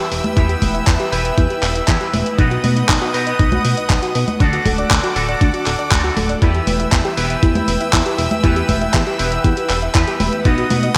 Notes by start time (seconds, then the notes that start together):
Already playing: E3 B3 E4 G4 B4 E5 G5 E6
0.11 E1 B4, open hi-hat
0.24 E5, closed hi-hat, high conga
0.36 E2 E3 B3 E4 G4 B4, kick, closed hi-hat
0.49 G4, closed hi-hat
0.62 E1 B4, kick, open hi-hat, high conga
0.74 E5, closed hi-hat
0.87 E2 E4, kick, clap, closed hi-hat
1.00 G4, closed hi-hat
1.12 E1 E3 B3 E4 G4 B4, open hi-hat
1.25 E5, closed hi-hat
1.38 E2 E4, kick, closed hi-hat
1.50 G4, closed hi-hat
1.63 E1 B4, clap, open hi-hat
1.75 E5, closed hi-hat
1.88 E2 E3 B3 E4 G4 B4, kick, clap, closed hi-hat
2.01 G4, closed hi-hat
2.13 E1 B4, open hi-hat, high conga
2.26 E5, closed hi-hat
2.38 B1 B2 B3 D#4 F#4 B4 D#5 F#5 D#6, kick, closed hi-hat
2.51 F#4, closed hi-hat
2.64 B2 B4, open hi-hat, high conga
2.76 D#5, closed hi-hat
2.89 B1 D#4, kick, clap, closed hi-hat
3.01 F#4, closed hi-hat
3.14 B2 B3 D#4 F#4 B4, open hi-hat
3.27 D#5, closed hi-hat
3.39 B1 D#4, kick, closed hi-hat
3.52 F#4, closed hi-hat, high conga
3.65 B2 B4, open hi-hat
3.77 D#5, closed hi-hat
3.90 B1 D#4, kick, clap, closed hi-hat
4.03 F#4, closed hi-hat
4.15 B2 B4, open hi-hat
4.28 D#5, closed hi-hat, high conga
4.40 D2 D3 A3 D4 F#4 A4 D5 D6, kick, closed hi-hat
4.53 F#4, closed hi-hat
4.65 D1 A4, kick, open hi-hat, high conga
4.78 D5, closed hi-hat
4.91 D2 D4, kick, clap, closed hi-hat
5.03 F#4, closed hi-hat
5.15 D1 D3 A3 D4 F#4 A4, open hi-hat
5.29 D5, closed hi-hat
5.41 D2 D4, kick, closed hi-hat
5.54 F#4, closed hi-hat
5.66 D1 A4, clap, open hi-hat
5.79 D5, closed hi-hat
5.91 D2 D3 A3 D4 F#4 A4, kick, clap, closed hi-hat
6.04 F#4, closed hi-hat
6.17 D1 A4, open hi-hat, high conga
6.29 D5, closed hi-hat
6.41 E2 E3 B3 E4 G4 B4 E5 G5 E6, kick, closed hi-hat
6.55 G4, closed hi-hat
6.67 E1 B4, open hi-hat, high conga
6.80 E5, closed hi-hat
6.92 E2 E4, kick, clap, closed hi-hat
7.05 G4, closed hi-hat
7.17 E1 E3 B3 E4 G4 B4, open hi-hat
7.30 E5, closed hi-hat
7.43 E2 E4, kick, closed hi-hat
7.55 G4, closed hi-hat, high conga
7.68 E1 B4, open hi-hat
7.81 E5, closed hi-hat
7.93 E2 E4, kick, clap, closed hi-hat
8.06 G4, closed hi-hat
8.18 E1 B4, open hi-hat
8.31 E5, closed hi-hat, high conga
8.43 E2 E3 B3 E4 G4 B4, kick, closed hi-hat
8.56 G4, closed hi-hat
8.69 E1 B4, kick, open hi-hat, high conga
8.81 E5, closed hi-hat
8.94 E2 E4, kick, clap, closed hi-hat
9.07 G4, closed hi-hat
9.18 E1 E3 B3 E4 G4 B4, open hi-hat
9.32 E5, closed hi-hat
9.44 E2 E4, kick, closed hi-hat
9.57 G4, closed hi-hat
9.70 E1 B4, clap, open hi-hat
9.82 E5, closed hi-hat
9.94 E2 E3 B3 E4 G4 B4, kick, clap, closed hi-hat
10.07 G4, closed hi-hat
10.20 E1 B4, open hi-hat, high conga
10.33 E5, closed hi-hat
10.45 B1 B2 B3 D#4 F#4 B4 D#5 F#5 D#6, kick, closed hi-hat
10.58 F#4, closed hi-hat
10.70 B2 B4, open hi-hat, high conga
10.83 D#5, closed hi-hat